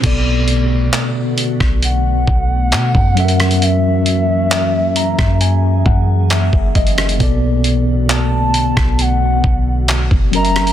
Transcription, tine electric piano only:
\new Staff \with { instrumentName = "Tine electric piano" } { \time 4/4 \key b \phrygian \tempo 4 = 67 << { r1 | r4. ais''8 aes''8 fis''8 e''8 ees''8 | r1 | } \\ { <b, b a' d''>2.~ <b, b a' d''>8 <fis cis' a' ais' e''>8~ | <fis cis' a' ais' e''>2.~ <fis cis' a' ais' e''>8 r8 | <b, b a' d''>2.~ <b, b a' d''>8 <fis cis' ais' ees'' e''>8 | } >> }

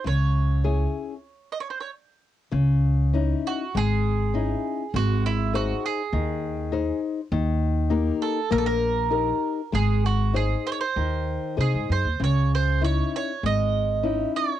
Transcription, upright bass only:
\new Staff \with { instrumentName = "Upright bass" } { \clef bass \time 4/4 \key cis \minor \tempo 4 = 99 cis,2 r2 | cis,2 gis,,2 | gis,,2 dis,2 | dis,2 ais,,2 |
gis,,2 dis,4 bis,16 gis,16 fis,16 dis,16 | cis,2 gis,,2 | }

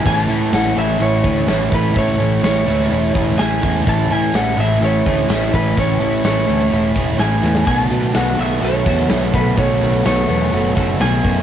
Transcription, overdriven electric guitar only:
\new Staff \with { instrumentName = "Overdriven electric guitar" } { \time 4/4 \key a \major \tempo 4 = 126 <a, e a cis' e'>8 <a cis' e'>8 <e a cis' e'>8 <a, e a cis' e'>8 <e a cis' e'>8 <a cis' e'>8 <a, e a cis' e'>8 <a cis' e'>8 | <a, e a cis' e'>8 <a cis' e'>8 <e a cis' e'>8 <a, e a cis' e'>8 <e a cis' e'>8 <a cis' e'>8 <a, e a cis' e'>8 <a cis' e'>8 | <a, e a cis' e'>8 <a cis' e'>8 <e a cis' e'>8 <a, e a cis' e'>8 <e a cis' e'>8 <a cis' e'>8 <a, e a cis' e'>8 <a cis' e'>8 | <a, e a cis' e'>8 <a cis' e'>8 <e a cis' e'>8 <a, e a cis' e'>8 <e a cis' e'>8 <a cis' e'>8 <a, e a cis' e'>8 <a cis' e'>8 |
<b, dis a b fis'>8 <a b fis'>8 <dis a b fis'>8 <b, dis a b fis'>8 <dis a b fis'>8 <a b fis'>8 <b, dis a b fis'>8 <a b fis'>8 | <b, dis a b fis'>8 <a b fis'>8 <dis a b fis'>8 <b, dis a b fis'>8 <dis a b fis'>8 <a b fis'>8 <b, dis a b fis'>8 <a b fis'>8 | }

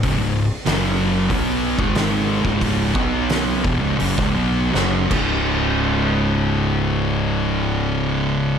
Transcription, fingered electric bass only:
\new Staff \with { instrumentName = "Fingered electric bass" } { \clef bass \time 4/4 \key b \dorian \tempo 4 = 84 cis,,16 cis,,8 r16 fis,,4 b,,8. gis,,4 cis,,16~ | cis,,8 b,,4 e,,16 cis,,16 fis,,16 cis,,16 b,,8 fis,,8 cis,,8~ | cis,,1 | }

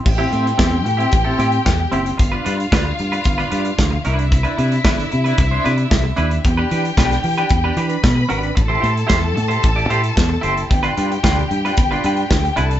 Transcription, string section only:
\new Staff \with { instrumentName = "String section" } { \time 4/4 \key a \minor \tempo 4 = 113 <g' g''>1 | <f' f''>2.~ <f' f''>8 <e' e''>8~ | <e' e''>1 | <g' g''>2~ <g' g''>8 <b' b''>4. |
<a' a''>1 | <g' g''>2.~ <g' g''>8 <a' a''>8 | }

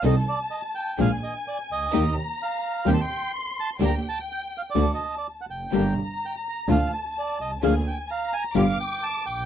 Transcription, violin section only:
\new Staff \with { instrumentName = "Violin section" } { \time 4/4 \key g \minor \tempo 4 = 127 a''2 aes''2 | bes''2 c'''2 | g''2 a''4. r8 | bes''2 a''2 |
aes''4 bes''4 d'''2 | }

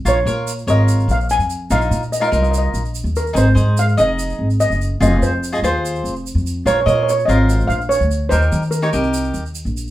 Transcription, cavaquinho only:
\new Staff \with { instrumentName = "Cavaquinho" } { \time 4/4 \key bes \dorian \tempo 4 = 145 <f' bes' des''>16 r16 <f' bes' des''>8 r8 <f' bes' des''>4~ <f' bes' des''>16 r4 r16 | <ees' f' bes'>8. r8 <ees' f' bes'>16 <ees' f' bes'>4~ <ees' f' bes'>16 r4 r16 | <ees' aes' c''>16 r16 <ees' aes' c''>8 r8 <ees' aes' ees''>4~ <ees' aes' ees''>16 r4 r16 | <f' aes' c''>8. r8 <f' aes' ees''>16 <f' aes' c''>4~ <f' aes' c''>16 r4 r16 |
<f' bes' des''>16 r16 <f' bes' ees''>8 r8 <f' bes' c''>4~ <f' bes' c''>16 r4 r16 | <ees' g' bes'>8. r8 <ees' g' des''>16 <ees' g' bes'>4~ <ees' g' bes'>16 r4 r16 | }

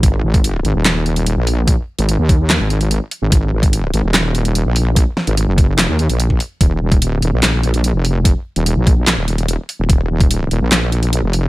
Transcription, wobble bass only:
\new Staff \with { instrumentName = "Wobble bass" } { \clef bass \time 4/4 \key aes \dorian \tempo 4 = 146 aes,,8 aes,,4 aes,,16 ees,,4. bes,,8.~ | bes,,16 r8 aes,,8 ees,4 aes,,4 r8 aes,,16 | aes,,8 aes,,4 aes,,16 ees,,4. bes,,8.~ | bes,,16 r8 aes,,8 ges,,4 ees,8 bes,,8. r8 |
ees,,8 ees,,4 ees,,16 bes,,4. f,,8.~ | f,,16 r8 ees,,8 bes,,4 ees,,4 r8 ees,,16 | ees,,8 ees,,4 ees,,16 bes,,4. f,,8. | }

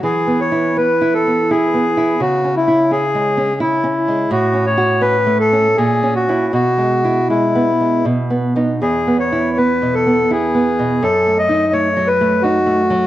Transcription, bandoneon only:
\new Staff \with { instrumentName = "Bandoneon" } { \time 3/4 \key e \major \tempo 4 = 83 gis'8 cis''8 b'8 a'8 gis'4 | fis'8 e'8 gis'4 e'4 | fis'8 cis''8 b'8 a'8 gis'8 fis'8 | fis'4 e'4 r4 |
gis'8 cis''8 b'8 a'8 gis'4 | a'8 dis''8 cis''8 b'8 fis'4 | }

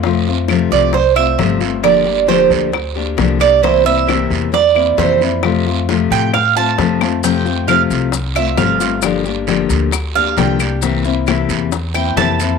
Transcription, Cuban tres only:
\new Staff \with { instrumentName = "Cuban tres" } { \time 4/4 \key f \major \tempo 4 = 134 r4. d''8 c''8 e''4. | d''4 c''8 r2 d''8 | c''8 e''4. d''4 c''8 r8 | r4. g''8 f''8 a''4. |
g''4 f''8 r4 e''8 f''4~ | f''8 r2 f''8 g''4~ | g''8 r2 g''8 a''4 | }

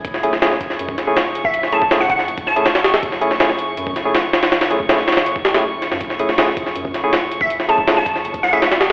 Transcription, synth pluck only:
\new Staff \with { instrumentName = "Synth pluck" } { \time 4/4 \key fis \minor \tempo 4 = 161 r2. r8. e''16~ | e''16 r16 a''8 r16 fis''16 fis''16 r8. a''4. | r1 | r1 |
r2. r8. e''16~ | e''16 r16 a''8 r16 a''8 r8. fis''16 e''8. r8 | }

